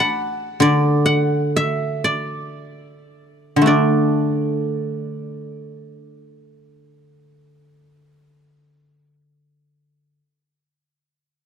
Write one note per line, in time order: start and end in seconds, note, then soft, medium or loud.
0.00 1.05 F#5 medium
0.00 1.39 A5 medium
0.00 1.26 B5 soft
0.00 1.10 D6 soft
0.60 3.55 D3 medium
0.60 2.04 D5 medium
1.06 2.66 F#5 medium
1.56 3.29 E5 medium
2.04 3.67 D5 medium
3.56 10.19 D3 soft
3.61 9.27 A3 soft
3.66 8.42 D4 soft
3.66 6.94 D5 medium